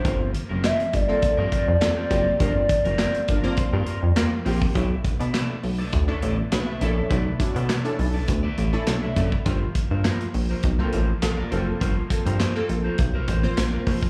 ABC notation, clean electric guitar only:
X:1
M:4/4
L:1/16
Q:1/4=102
K:Glyd
V:1 name="Clean electric guitar"
[=C=F_B] z2 [CFB] [CFB] z2 [CFB] z [CFB] [CFB] z2 [CF=c] [CFB] z | [=C=F_B] z2 [CFB] [CFB] z2 [CFB] z [CFB] [CFB] z3 [CFB] z | [EAd] z2 [EAd] [EAd] z2 [EAd] z [EAd] [EAd] z2 [EAe] [EAd] z | [EAd] z2 [EAd] [EAd] z2 [EAd] z [EAd] [EAd] z2 [EAe] [EAd] z |
[=F_B=c] z2 [FBc] [FBc] z2 [FBc] z [FBc] [FBc] z2 [FBd] [FBc] z | [=F_B=c] z2 [FBc] [FBc] z2 [FBc] z [FBc] [FBc] z2 [FBd] [FBc] z |]